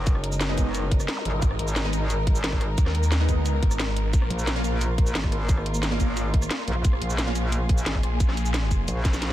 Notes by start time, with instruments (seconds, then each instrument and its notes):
Already playing: wobble bass F#1, string section G#3 D#4 A#4
0.07 kick, closed hi-hat, shaker
0.15 cross-stick
0.24 closed hi-hat
0.32 shaker
0.41 snare, closed hi-hat, shaker
0.49 synth stab G#3 B3 D#4
0.58 kick, closed hi-hat, shaker
0.75 closed hi-hat, shaker
0.91 kick, closed hi-hat
1.00 cross-stick, shaker
1.08 snare, closed hi-hat
1.17 zap
1.25 wobble bass G#1, closed hi-hat
1.42 detuned saw bass G#1, kick, closed hi-hat, shaker
1.51 cross-stick
1.59 wobble bass G#1, closed hi-hat
1.68 shaker
1.76 snare, closed hi-hat, shaker
1.85 synth stab G#3 B3 D#4
1.93 closed hi-hat, shaker
2.10 closed hi-hat, shaker
2.27 kick, closed hi-hat
2.35 shaker
2.44 wobble bass G#1, snare, closed hi-hat
2.52 kick, cross-stick
2.61 cross-stick, closed hi-hat
2.78 detuned saw bass D#2, kick, closed hi-hat, shaker
2.86 cross-stick, snare
2.95 closed hi-hat
3.03 shaker
3.12 snare, closed hi-hat, shaker
3.20 synth stab G#3 B3 D#4
3.29 kick, closed hi-hat, shaker
3.37 detuned saw bass D2
3.46 closed hi-hat, shaker
3.63 detuned saw bass G#1, kick, closed hi-hat
3.71 cross-stick, shaker
3.80 snare, closed hi-hat, shaker
3.97 closed hi-hat
4.13 detuned saw bass A#1, string section A#3 F4, kick, closed hi-hat, shaker
4.22 cross-stick
4.30 wobble bass A#1, closed hi-hat
4.39 shaker
4.47 snare, closed hi-hat, shaker
4.56 synth stab A#3 C#4 F4
4.64 closed hi-hat, shaker
4.81 closed hi-hat, shaker
4.98 kick, closed hi-hat
5.07 shaker
5.15 wobble bass G#1, snare, closed hi-hat
5.24 kick, cross-stick
5.32 cross-stick, closed hi-hat
5.49 kick, closed hi-hat, shaker
5.58 cross-stick
5.66 closed hi-hat
5.75 shaker
5.83 snare, closed hi-hat, shaker
5.91 synth stab A#3 C#4 F4
6.00 kick, closed hi-hat, shaker
6.17 closed hi-hat, shaker
6.34 kick, closed hi-hat
6.42 cross-stick, shaker
6.51 snare, closed hi-hat
6.68 wobble bass A#1, closed hi-hat
6.85 detuned saw bass A#1, string section G#4, kick, closed hi-hat, shaker
6.93 cross-stick
7.01 wobble bass A#1, closed hi-hat
7.10 shaker
7.18 snare, closed hi-hat, shaker
7.27 synth stab A#3 C#4 F4
7.35 closed hi-hat, shaker
7.52 closed hi-hat, shaker
7.69 kick, closed hi-hat
7.78 shaker
7.86 wobble bass G#1, snare, closed hi-hat
7.95 kick, cross-stick
8.03 detuned saw bass A#1, cross-stick, closed hi-hat
8.20 kick, closed hi-hat, shaker
8.29 cross-stick, snare
8.37 closed hi-hat, shaker
8.46 shaker
8.54 snare, closed hi-hat, shaker
8.71 kick, closed hi-hat, shaker
8.88 wobble bass A#1, closed hi-hat, shaker
9.05 kick, snare, closed hi-hat, shaker
9.13 snare, shaker
9.22 snare, closed hi-hat